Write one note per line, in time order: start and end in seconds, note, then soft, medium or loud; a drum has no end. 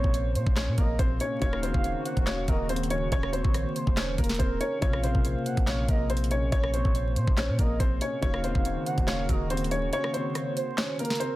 0.00 0.37 A#1 loud
0.00 1.38 A#2 medium
0.00 1.38 C3 medium
0.00 1.37 C#3 medium
0.00 1.38 A#3 medium
0.00 8.19 A#3 medium
0.00 0.53 C4 medium
0.00 1.38 F4 medium
0.00 0.53 C5 medium
0.00 0.32 C#5 loud
0.00 kick medium
0.14 closed hi-hat medium
0.35 0.46 A#2 medium
0.35 0.75 C5 medium
0.35 closed hi-hat medium
0.47 0.69 A#1 loud
0.47 kick loud
0.56 0.74 C#4 medium
0.56 0.73 C#5 medium
0.56 snare loud
0.56 clap medium
0.56 closed hi-hat medium
0.68 0.77 A#2 loud
0.78 0.98 A#1 loud
0.78 0.95 A#3 medium
0.78 0.94 A#4 medium
0.78 0.98 D#5 medium
0.78 kick loud
0.78 closed hi-hat medium
0.99 1.20 A#1 loud
0.99 1.16 C4 medium
0.99 1.16 C5 medium
0.99 kick loud
0.99 closed hi-hat medium
1.20 1.38 C#4 medium
1.20 1.37 C#5 medium
1.20 closed hi-hat medium
1.40 1.73 D#1 loud
1.40 4.77 C#3 medium
1.40 4.79 C#3 medium
1.40 4.79 D#3 medium
1.40 4.78 A#3 medium
1.40 1.59 C#4 medium
1.40 4.78 D#4 medium
1.40 4.79 F#4 medium
1.40 1.58 C#5 loud
1.40 2.02 F5 loud
1.40 kick loud
1.40 closed hi-hat medium
1.53 cross-stick loud
1.63 2.23 C4 medium
1.63 2.23 C5 medium
1.63 closed hi-hat medium
1.74 1.95 D#1 loud
1.74 kick medium
1.84 closed hi-hat medium
2.05 2.26 F#5 medium
2.05 closed hi-hat medium
2.17 2.47 D#1 loud
2.17 kick loud
2.17 closed hi-hat soft
2.26 2.44 C#4 medium
2.26 2.43 C#5 medium
2.26 2.47 F5 medium
2.26 snare loud
2.26 clap medium
2.26 closed hi-hat medium
2.48 3.09 D#1 loud
2.48 2.65 A#3 medium
2.48 2.65 A#4 medium
2.48 2.68 D#5 medium
2.48 kick loud
2.48 closed hi-hat medium
2.69 2.87 C4 medium
2.69 2.86 C5 medium
2.69 closed hi-hat medium
2.76 closed hi-hat medium
2.83 closed hi-hat soft
2.90 3.08 C#4 medium
2.90 3.07 C#5 medium
2.90 closed hi-hat medium
3.12 3.43 D#1 loud
3.12 3.29 C#4 medium
3.12 3.72 C#5 loud
3.12 3.29 C#5 loud
3.12 kick loud
3.12 closed hi-hat medium
3.23 cross-stick loud
3.33 3.93 C4 medium
3.33 3.93 C5 medium
3.33 closed hi-hat medium
3.44 3.65 A#1 loud
3.44 kick medium
3.54 cross-stick medium
3.54 closed hi-hat medium
3.76 4.16 C5 medium
3.76 closed hi-hat medium
3.87 4.17 D#1 loud
3.87 kick loud
3.97 4.14 C#4 medium
3.97 4.13 C#5 medium
3.97 snare loud
3.97 clap medium
3.97 closed hi-hat medium
4.18 4.39 D#1 loud
4.18 4.35 A#3 medium
4.18 4.78 A#4 medium
4.18 4.35 A#4 medium
4.18 kick loud
4.18 closed hi-hat medium
4.24 closed hi-hat medium
4.29 snare medium
4.29 closed hi-hat medium
4.35 closed hi-hat medium
4.39 4.60 D#1 loud
4.39 4.56 C4 medium
4.39 4.56 C5 medium
4.39 kick loud
4.39 closed hi-hat medium
4.61 4.78 C#4 medium
4.61 4.77 C#5 medium
4.61 closed hi-hat medium
4.81 5.13 A#1 loud
4.81 8.19 A#2 medium
4.81 8.19 C3 medium
4.81 8.18 C#3 medium
4.81 8.18 A#3 medium
4.81 4.99 C#4 medium
4.81 8.19 F4 medium
4.81 4.99 C#5 loud
4.81 5.42 F5 loud
4.81 kick loud
4.81 closed hi-hat medium
4.93 cross-stick loud
5.03 5.64 C4 medium
5.03 5.63 C5 medium
5.03 closed hi-hat medium
5.15 5.35 A#1 loud
5.15 kick medium
5.25 closed hi-hat medium
5.46 5.66 F#5 medium
5.46 closed hi-hat medium
5.57 5.87 A#1 loud
5.57 kick loud
5.57 closed hi-hat soft
5.67 5.84 C#4 medium
5.67 5.84 C#5 medium
5.67 5.88 F5 medium
5.67 snare loud
5.67 clap medium
5.67 closed hi-hat medium
5.88 6.50 A#1 loud
5.88 6.06 A#3 medium
5.88 6.05 A#4 medium
5.88 6.09 D#5 medium
5.88 kick loud
5.88 closed hi-hat medium
6.10 6.27 C4 medium
6.10 6.26 C5 medium
6.10 closed hi-hat medium
6.17 closed hi-hat medium
6.24 closed hi-hat soft
6.31 6.48 C#4 medium
6.31 6.48 C#5 medium
6.31 closed hi-hat medium
6.52 6.84 A#1 loud
6.52 6.69 C#4 medium
6.52 6.69 C#5 loud
6.52 7.12 C#5 loud
6.52 kick loud
6.52 closed hi-hat medium
6.64 cross-stick loud
6.74 7.34 C4 medium
6.74 7.34 C5 medium
6.74 closed hi-hat medium
6.85 7.18 A#1 loud
6.85 kick medium
6.95 closed hi-hat medium
7.16 7.27 A#2 loud
7.16 7.56 C5 medium
7.16 closed hi-hat medium
7.27 7.50 A#1 loud
7.27 kick loud
7.37 7.54 C#4 medium
7.37 7.54 C#5 medium
7.37 snare loud
7.37 clap medium
7.37 closed hi-hat medium
7.49 7.58 A#2 loud
7.59 7.79 A#1 loud
7.59 7.76 A#3 medium
7.59 7.75 A#4 medium
7.59 7.79 D#5 medium
7.59 kick loud
7.59 closed hi-hat medium
7.80 8.00 A#1 loud
7.80 7.97 C4 medium
7.80 7.96 C5 medium
7.80 kick loud
7.80 closed hi-hat medium
8.01 8.19 C#4 medium
8.01 8.18 C#5 medium
8.01 closed hi-hat medium
8.21 8.54 D#1 loud
8.21 11.36 C#3 medium
8.21 11.36 D#3 medium
8.21 11.36 A#3 medium
8.21 8.40 C#4 medium
8.21 11.36 D#4 medium
8.21 11.36 F#4 medium
8.21 8.39 C#5 loud
8.21 8.82 F5 loud
8.21 kick loud
8.21 closed hi-hat medium
8.34 cross-stick loud
8.44 9.04 C4 medium
8.44 9.04 C5 medium
8.44 closed hi-hat medium
8.55 8.76 D#1 loud
8.55 kick loud
8.65 closed hi-hat medium
8.86 9.06 F#5 medium
8.86 closed hi-hat medium
8.98 9.28 D#1 loud
8.98 kick loud
8.98 closed hi-hat soft
9.07 9.24 C#4 medium
9.07 9.24 C#5 medium
9.07 9.28 F5 medium
9.07 snare loud
9.07 clap medium
9.07 closed hi-hat medium
9.29 9.90 D#1 loud
9.29 9.46 A#3 medium
9.29 9.46 A#4 medium
9.29 9.49 D#5 medium
9.29 kick loud
9.29 closed hi-hat medium
9.50 9.67 C4 medium
9.50 9.67 C5 medium
9.50 closed hi-hat medium
9.57 closed hi-hat medium
9.64 closed hi-hat soft
9.71 9.88 C#4 medium
9.71 9.88 C#5 medium
9.71 closed hi-hat medium
9.93 10.10 C#4 medium
9.93 10.53 C#5 loud
9.93 10.10 C#5 loud
9.93 closed hi-hat medium
10.04 cross-stick loud
10.13 10.74 C4 medium
10.13 10.74 C5 medium
10.13 closed hi-hat medium
10.35 cross-stick medium
10.35 closed hi-hat medium
10.57 10.97 C5 medium
10.57 closed hi-hat medium
10.78 10.95 C#4 medium
10.78 10.94 C#5 medium
10.78 snare loud
10.78 clap medium
10.78 closed hi-hat medium
10.99 11.16 A#3 medium
10.99 11.36 A#4 medium
10.99 11.16 A#4 medium
10.99 closed hi-hat medium
11.05 closed hi-hat medium
11.10 snare medium
11.10 closed hi-hat medium
11.15 closed hi-hat medium
11.20 11.36 C4 medium
11.20 11.36 C5 medium
11.20 closed hi-hat medium